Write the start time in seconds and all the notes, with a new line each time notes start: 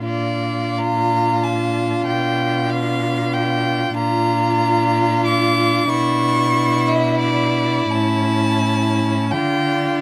0.05 A#2 D4 F4 D5
0.78 A#5
1.43 A5
2.06 B2 G5
2.70 F5
3.33 G5
3.97 A#2 D4 F4 A#5
5.25 D6
5.89 B2 E4 C#6
6.88 E5
7.19 D5
7.91 A2 C#4 A5
9.31 D3 D4 F4 G5